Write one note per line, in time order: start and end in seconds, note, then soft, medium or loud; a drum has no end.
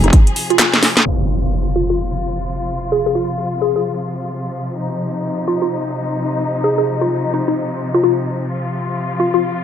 0.00 0.11 F1 loud
0.00 1.02 C3 medium
0.00 1.02 F3 medium
0.00 0.10 D#4 medium
0.00 1.05 G#4 medium
0.00 closed hi-hat soft
0.13 kick loud
0.13 closed hi-hat medium
0.27 closed hi-hat soft
0.36 open hi-hat loud
0.50 0.56 F4 medium
0.50 closed hi-hat soft
0.59 0.68 F4 medium
0.59 snare medium
0.59 clap loud
0.59 closed hi-hat medium
0.74 snare medium
0.74 closed hi-hat soft
0.83 snare medium
0.83 open hi-hat loud
0.97 snare medium
0.97 closed hi-hat medium
1.06 9.64 C3 medium
1.06 9.64 F3 medium
1.06 4.77 F4 medium
1.06 impact medium
1.76 1.85 F4 medium
1.90 1.96 F4 medium
2.92 3.01 G#4 medium
3.06 3.12 G#4 medium
3.15 3.28 F4 medium
3.62 3.71 G#4 medium
3.76 3.82 G#4 medium
4.78 8.49 D#4 medium
5.48 5.57 F4 medium
5.62 5.68 F4 medium
6.64 6.73 G#4 medium
6.78 6.84 G#4 medium
7.01 7.32 F4 medium
7.34 7.43 D#4 medium
7.48 7.54 D#4 medium
7.94 8.00 F4 medium
8.03 8.13 F4 medium
8.50 9.64 F4 medium
9.20 9.29 F4 medium
9.34 9.40 F4 medium